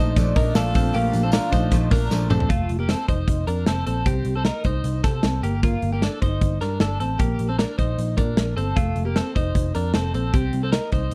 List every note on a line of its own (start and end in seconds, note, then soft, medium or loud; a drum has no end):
0.00 0.13 A#1 loud
0.00 0.16 F3 medium
0.00 0.16 A3 medium
0.00 0.16 D4 medium
0.00 0.34 D#4 medium
0.00 0.34 C5 medium
0.00 0.18 D#5 loud
0.16 0.32 A#1 loud
0.16 0.36 A#2 medium
0.16 0.36 F3 medium
0.16 0.35 A3 medium
0.16 0.34 D4 loud
0.16 0.35 D5 medium
0.16 kick medium
0.16 hi-hat pedal medium
0.16 open hi-hat medium
0.16 tambourine medium
0.35 0.52 A#1 loud
0.35 0.54 F3 soft
0.35 0.55 A3 soft
0.35 0.55 D4 medium
0.35 0.55 A#4 medium
0.35 0.54 D#5 loud
0.35 kick loud
0.35 hi-hat pedal medium
0.35 open hi-hat medium
0.35 tambourine soft
0.54 0.72 A#1 loud
0.54 0.74 A#2 medium
0.54 0.75 F3 medium
0.54 0.73 A3 medium
0.54 0.75 D4 medium
0.54 0.72 D4 medium
0.54 0.74 A4 medium
0.54 0.91 F5 loud
0.54 snare loud
0.54 hi-hat pedal medium
0.54 open hi-hat loud
0.54 tambourine loud
0.73 0.91 A#1 loud
0.73 0.92 F3 soft
0.73 0.93 A3 medium
0.73 0.95 C4 medium
0.73 0.93 D4 medium
0.73 0.94 A4 medium
0.73 kick loud
0.73 hi-hat pedal medium
0.73 open hi-hat medium
0.73 tambourine soft
0.92 1.10 A#1 loud
0.92 1.13 A#2 medium
0.92 1.13 F3 medium
0.92 1.12 A3 medium
0.92 1.22 A#3 medium
0.92 1.10 D4 medium
0.92 1.22 G4 medium
0.92 2.06 F5 loud
0.92 hi-hat pedal medium
0.92 open hi-hat medium
0.92 tambourine soft
1.12 1.38 A#1 loud
1.12 1.31 F3 soft
1.12 1.32 A3 medium
1.12 1.32 D4 medium
1.12 hi-hat pedal medium
1.12 open hi-hat medium
1.12 tambourine medium
1.23 1.33 C4 medium
1.23 1.32 A4 medium
1.31 1.51 A#2 medium
1.31 1.52 F3 medium
1.31 1.51 A3 medium
1.31 1.53 D4 medium
1.31 1.49 D4 medium
1.31 1.52 A#4 medium
1.31 snare loud
1.31 hi-hat pedal medium
1.31 open hi-hat medium
1.31 tambourine medium
1.50 1.68 A#1 medium
1.50 1.70 F3 medium
1.50 1.71 A3 medium
1.50 1.71 D4 medium
1.50 1.89 D#4 medium
1.50 1.89 C5 medium
1.50 kick medium
1.50 hi-hat pedal medium
1.50 open hi-hat medium
1.50 tambourine medium
1.71 1.88 A#1 loud
1.71 1.91 A#2 medium
1.71 1.91 F3 loud
1.71 1.91 A3 medium
1.71 1.89 D4 loud
1.71 kick medium
1.71 hi-hat pedal medium
1.71 open hi-hat loud
1.71 tambourine medium
1.90 2.07 A#1 loud
1.90 2.09 F3 medium
1.90 2.10 A3 medium
1.90 2.10 D4 medium
1.90 2.28 D4 medium
1.90 2.28 A#4 medium
1.90 kick loud
1.90 snare soft
1.90 hi-hat pedal medium
1.90 open hi-hat medium
1.90 tambourine soft
2.09 2.27 A#1 loud
2.09 2.29 A#2 medium
2.09 2.30 F3 medium
2.09 2.29 A3 medium
2.09 2.28 D4 medium
2.09 snare medium
2.09 tambourine medium
2.29 2.46 A#1 loud
2.29 2.50 F3 medium
2.29 2.50 A3 medium
2.29 2.50 C4 medium
2.29 2.49 D4 medium
2.29 2.50 A4 medium
2.29 mid tom loud
2.29 tambourine soft
2.40 floor tom loud
2.49 2.66 F1 medium
2.49 2.77 A3 medium
2.49 2.77 F4 medium
2.49 kick medium
2.49 closed hi-hat medium
2.69 2.94 F1 medium
2.69 closed hi-hat medium
2.79 2.89 A#3 medium
2.79 2.89 G4 medium
2.89 3.09 C4 medium
2.89 3.08 A4 medium
2.89 snare medium
2.89 closed hi-hat medium
3.08 3.25 F1 medium
3.08 3.46 D#4 soft
3.08 3.45 C5 medium
3.08 kick medium
3.08 closed hi-hat soft
3.28 3.44 F1 medium
3.28 kick medium
3.28 closed hi-hat medium
3.47 3.63 F2 medium
3.47 3.67 D4 medium
3.47 3.67 A#4 medium
3.47 closed hi-hat medium
3.66 3.83 F1 medium
3.66 3.86 C4 medium
3.66 3.85 A4 medium
3.66 snare loud
3.66 closed hi-hat medium
3.87 4.03 A#1 medium
3.87 4.06 C4 soft
3.87 4.06 A4 medium
3.87 closed hi-hat medium
4.06 4.22 C2 medium
4.06 4.34 C4 medium
4.06 4.34 G4 medium
4.06 kick medium
4.06 closed hi-hat medium
4.25 4.50 C2 medium
4.25 closed hi-hat medium
4.36 4.46 C4 medium
4.36 4.45 A4 medium
4.45 4.65 D#4 medium
4.45 4.65 A#4 medium
4.45 snare medium
4.45 closed hi-hat medium
4.64 4.81 C2 medium
4.64 5.02 D#4 medium
4.64 5.02 C5 medium
4.64 kick medium
4.64 closed hi-hat medium
4.84 5.00 C2 medium
4.84 closed hi-hat medium
5.03 5.20 C3 medium
5.03 5.41 C4 medium
5.03 5.41 A4 medium
5.03 kick medium
5.03 snare soft
5.03 closed hi-hat medium
5.23 5.40 C2 medium
5.23 snare loud
5.23 closed hi-hat medium
5.43 5.75 G1 medium
5.43 5.63 A#3 medium
5.43 5.63 G4 medium
5.43 closed hi-hat medium
5.63 5.91 A#3 medium
5.63 5.91 F4 medium
5.63 kick medium
5.63 closed hi-hat medium
5.82 6.07 G1 medium
5.82 closed hi-hat medium
5.93 6.03 A#3 medium
5.93 6.02 G4 medium
6.02 6.22 D4 medium
6.02 6.21 A4 medium
6.02 snare medium
6.02 closed hi-hat medium
6.22 6.38 G1 medium
6.22 6.59 D#4 medium
6.22 6.59 C5 medium
6.22 kick medium
6.22 closed hi-hat medium
6.41 6.58 G1 medium
6.41 kick medium
6.41 closed hi-hat medium
6.61 6.77 G2 medium
6.61 6.80 D4 medium
6.61 6.81 A#4 medium
6.61 snare soft
6.61 closed hi-hat medium
6.80 6.97 G1 medium
6.80 7.01 D4 medium
6.80 6.99 A4 medium
6.80 snare loud
6.80 closed hi-hat medium
7.00 7.16 A1 medium
7.00 7.20 C4 medium
7.00 7.20 A4 medium
7.00 closed hi-hat medium
7.19 7.36 A#1 medium
7.19 7.48 A#3 medium
7.19 7.47 G4 medium
7.19 kick loud
7.19 closed hi-hat medium
7.39 7.64 A#1 medium
7.39 closed hi-hat medium
7.49 7.59 C4 medium
7.49 7.58 A4 medium
7.59 7.79 D4 medium
7.59 7.78 A#4 medium
7.59 snare medium
7.59 closed hi-hat medium
7.78 7.95 A#1 medium
7.78 8.16 D#4 medium
7.78 8.15 C5 medium
7.78 kick medium
7.78 closed hi-hat medium
7.98 8.19 A#1 medium
7.98 closed hi-hat medium
8.17 8.34 A#2 medium
8.17 8.55 D4 medium
8.17 8.54 A#4 medium
8.17 kick medium
8.17 closed hi-hat medium
8.37 8.53 A#1 medium
8.37 snare loud
8.37 closed hi-hat medium
8.57 8.73 G1 medium
8.57 8.77 C4 soft
8.57 8.76 A4 medium
8.57 closed hi-hat medium
8.76 8.93 F1 medium
8.76 9.05 A3 medium
8.76 9.04 F4 medium
8.76 kick loud
8.76 closed hi-hat medium
8.96 9.20 F1 medium
8.96 closed hi-hat medium
9.05 9.16 A#3 medium
9.05 9.15 G4 medium
9.16 9.36 C4 medium
9.16 9.35 A4 medium
9.16 snare medium
9.16 closed hi-hat medium
9.35 9.52 F1 medium
9.35 9.73 D#4 medium
9.35 9.72 C5 medium
9.35 kick medium
9.35 closed hi-hat medium
9.55 9.71 F1 medium
9.55 kick medium
9.55 closed hi-hat medium
9.75 9.91 F2 medium
9.75 9.95 D4 medium
9.75 9.94 A#4 medium
9.75 closed hi-hat medium
9.94 10.11 F1 medium
9.94 10.14 C4 medium
9.94 10.13 A4 medium
9.94 snare loud
9.94 closed hi-hat medium
10.14 10.30 A#1 medium
10.14 10.33 C4 medium
10.14 10.34 A4 medium
10.14 closed hi-hat medium
10.34 10.50 C2 medium
10.34 10.62 C4 medium
10.34 10.61 G4 medium
10.34 kick medium
10.34 closed hi-hat medium
10.53 10.77 C2 medium
10.53 closed hi-hat medium
10.63 10.73 C4 medium
10.63 10.72 A4 medium
10.72 10.92 D#4 medium
10.72 10.92 A#4 medium
10.72 snare medium
10.72 closed hi-hat medium
10.92 11.09 C2 medium
10.92 11.14 D#4 medium
10.92 11.14 C5 medium
10.92 kick medium
10.92 closed hi-hat medium